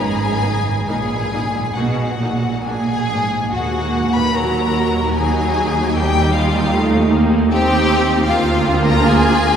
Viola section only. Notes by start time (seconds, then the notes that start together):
0.42 B3 D#4
0.88 A#3 D#4
1.33 A#3 D#4
1.78 A#3 D#4
2.22 A#3 D#4
2.66 A#3 D4
3.12 A#3 D4
3.55 A#3 F#4
4.35 F#3 F#4
5.17 F#3 D#4
5.97 G3 D#4
6.75 A3
7.14 A#3
7.52 C4 D#4
8.28 A#3 F4